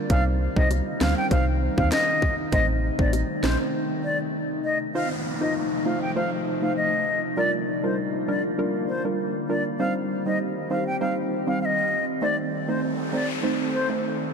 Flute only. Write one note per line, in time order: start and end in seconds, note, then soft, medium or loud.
0.10 0.24 F5 loud
0.56 0.69 D#5 medium
1.01 1.15 F5 medium
1.17 1.29 G5 medium
1.31 1.45 F5 medium
1.77 1.90 F5 medium
1.92 2.35 D#5 medium
2.52 2.66 D#5 loud
2.99 3.11 D5 medium
3.44 3.57 C5 medium
4.04 4.18 D5 medium
4.65 4.78 D#5 medium
4.95 5.09 F5 medium
5.41 5.53 D#5 medium
5.86 6.00 F5 medium
6.02 6.14 G5 medium
6.16 6.30 F5 medium
6.62 6.75 F5 medium
6.77 7.20 D#5 medium
7.37 7.51 D5 loud
7.83 7.96 C5 medium
8.28 8.42 D5 medium
8.89 9.03 C5 medium
9.49 9.63 D5 medium
9.80 9.93 F5 medium
10.26 10.38 D#5 medium
10.71 10.84 F5 medium
10.87 10.99 G5 medium
11.01 11.15 F5 medium
11.47 11.59 F5 medium
11.62 12.05 D#5 medium
11.62 11.66 F5 medium
12.22 12.36 D5 loud
12.68 12.81 C5 medium
13.13 13.27 D5 medium
13.73 13.87 C5 medium